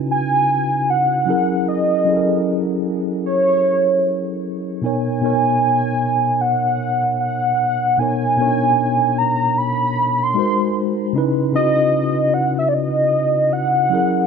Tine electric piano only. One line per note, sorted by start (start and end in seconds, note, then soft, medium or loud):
0.00 1.29 C#3 medium
0.00 1.27 C#4 medium
0.00 1.29 D#4 medium
0.00 1.28 E4 medium
0.00 0.28 F#4 medium
0.00 1.29 B4 medium
1.25 1.96 F#3 medium
1.25 1.97 C#4 medium
1.25 1.97 E4 medium
1.25 1.98 G#4 medium
1.30 1.98 A#4 medium
2.05 3.42 F#3 medium
2.05 3.42 C#4 medium
2.05 3.43 E4 medium
2.05 3.43 G#4 medium
2.10 2.16 A4 medium
2.16 3.47 A#4 medium
4.81 5.17 B2 medium
4.81 5.17 B3 medium
4.81 5.18 D#4 medium
4.81 5.18 A#4 medium
4.86 5.19 C#5 medium
5.21 6.58 B2 medium
5.21 6.58 B3 medium
5.21 6.59 D#4 medium
5.21 6.59 A#4 medium
5.26 6.60 C#5 medium
7.97 8.33 B2 medium
7.97 8.33 B3 medium
7.97 8.34 D#4 medium
7.97 8.34 A#4 medium
8.02 8.35 C#5 medium
8.37 9.74 B2 medium
8.37 9.74 B3 medium
8.37 8.47 D4 medium
8.37 9.75 A#4 medium
8.42 9.78 D#4 medium
8.42 9.76 C#5 medium
10.34 11.04 G#3 medium
10.34 11.05 D#4 medium
10.34 11.05 F#4 medium
10.34 11.06 A#4 medium
10.39 11.07 C5 medium
11.13 11.48 C#3 medium
11.13 11.49 C#4 medium
11.13 11.50 D#4 medium
11.13 11.50 E4 medium
11.18 11.51 B4 medium
11.52 12.89 C#3 medium
11.52 12.90 C#4 medium
11.52 12.90 D#4 medium
11.52 12.91 E4 medium
11.57 12.92 F#4 medium
13.89 14.27 F#3 medium
13.89 14.27 C#4 medium
13.89 14.27 E4 medium
13.89 14.27 G#4 medium
13.94 14.27 A#4 medium